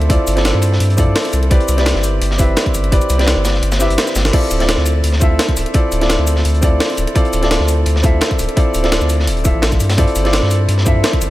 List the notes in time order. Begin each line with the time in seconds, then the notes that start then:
Already playing: D2 C4 E4 F4 A4 D5 E5
0.02 closed hi-hat
0.09 C4 E4 F4 A4 D5, kick, closed hi-hat
0.27 G1, closed hi-hat, shaker
0.36 C4 E4 F4 A4 D5, snare, closed hi-hat
0.45 snare, closed hi-hat
0.55 G2
0.62 closed hi-hat, shaker
0.73 snare
0.80 G2, closed hi-hat
0.90 closed hi-hat
0.97 C4 E4 F4 A4 D5, kick, closed hi-hat, shaker
1.07 G2
1.16 snare, closed hi-hat, open hi-hat
1.25 closed hi-hat
1.33 C2, closed hi-hat, shaker
1.43 closed hi-hat
1.50 C4 E4 G4 B4 D5, kick, closed hi-hat
1.60 closed hi-hat
1.69 C2, closed hi-hat, shaker
1.77 C4 E4 G4 B4 D5, snare, closed hi-hat
1.86 snare, closed hi-hat
1.95 G1, snare
2.04 closed hi-hat, shaker
2.21 G1, closed hi-hat
2.31 snare
2.38 C4 E4 G4 B4 E5, kick, closed hi-hat, shaker
2.49 G1
2.57 snare, closed hi-hat
2.66 kick, closed hi-hat
2.75 G1, closed hi-hat, shaker
2.84 closed hi-hat
2.92 C4 E4 G4 B4 D5, kick, closed hi-hat
3.02 closed hi-hat, shaker
3.10 C2, closed hi-hat, shaker
3.18 C4 E4 G4 B4 D5, snare, closed hi-hat
3.27 snare, closed hi-hat
3.37 G1
3.45 snare, closed hi-hat, shaker
3.54 snare
3.63 G1, closed hi-hat
3.72 snare, closed hi-hat, shaker
3.79 C4 E4 G4 B4 E5, snare, closed hi-hat, shaker
3.90 G1, closed hi-hat
3.98 snare, closed hi-hat
4.07 snare, closed hi-hat, shaker
4.15 G1, snare, closed hi-hat, shaker
4.25 snare, closed hi-hat
4.33 C4 E4 F4 A4 D5, kick, closed hi-hat, crash
4.43 closed hi-hat
4.51 D1, closed hi-hat, shaker
4.59 C4 E4 F4 A4 D5, snare, closed hi-hat
4.69 snare, closed hi-hat
4.78 D2, snare
4.86 closed hi-hat, shaker
5.04 D2, closed hi-hat
5.13 snare
5.20 C4 E4 F4 A4 E5, kick, closed hi-hat, shaker
5.31 D2
5.39 snare, closed hi-hat
5.48 kick, closed hi-hat
5.57 D1, closed hi-hat, shaker
5.66 closed hi-hat
5.74 C4 E4 F4 A4 D5, kick, closed hi-hat
5.92 D1, closed hi-hat, shaker
6.00 C4 E4 F4 A4 D5, snare, closed hi-hat
6.09 snare, closed hi-hat
6.19 D2
6.27 closed hi-hat, shaker
6.36 snare
6.45 D2, closed hi-hat
6.54 closed hi-hat
6.61 C4 E4 F4 A4 D5, kick, closed hi-hat, shaker
6.72 D2
6.80 snare, closed hi-hat, open hi-hat
6.90 closed hi-hat
6.97 D1, closed hi-hat, shaker
7.07 closed hi-hat
7.15 C4 E4 F4 A4 D5, kick, closed hi-hat
7.25 closed hi-hat
7.33 D1, closed hi-hat, shaker
7.41 C4 E4 F4 A4 D5, snare, closed hi-hat
7.51 snare, closed hi-hat
7.60 D2, snare
7.68 closed hi-hat, shaker
7.86 D2, closed hi-hat
7.96 snare
8.03 C4 E4 F4 A4 E5, kick, closed hi-hat, shaker
8.13 D2
8.21 snare, closed hi-hat
8.31 kick, closed hi-hat
8.39 D1, closed hi-hat, shaker
8.49 closed hi-hat
8.56 C4 E4 F4 A4 D5, kick, closed hi-hat
8.75 D1, closed hi-hat, shaker
8.83 C4 E4 F4 A4 D5, snare, closed hi-hat
8.92 snare, closed hi-hat
9.01 D2, shaker
9.10 closed hi-hat, shaker
9.20 snare
9.27 D1, closed hi-hat
9.37 closed hi-hat
9.44 C4 E4 F4 A4 E5, kick, closed hi-hat, shaker
9.55 A1
9.62 snare, closed hi-hat
9.72 kick, snare, closed hi-hat, shaker
9.80 G2, closed hi-hat, shaker
9.90 snare, closed hi-hat
9.97 C4 E4 F4 A4 D5, kick, closed hi-hat
10.07 closed hi-hat
10.16 G1, closed hi-hat, shaker
10.24 C4 E4 F4 A4 D5, snare, closed hi-hat
10.33 snare, closed hi-hat
10.43 G2, snare
10.51 closed hi-hat, shaker
10.69 G2, closed hi-hat
10.78 snare
10.85 C4 E4 F4 A4 E5, kick, closed hi-hat, shaker
10.96 G2
11.04 snare, closed hi-hat
11.13 kick, closed hi-hat
11.21 G1, closed hi-hat, shaker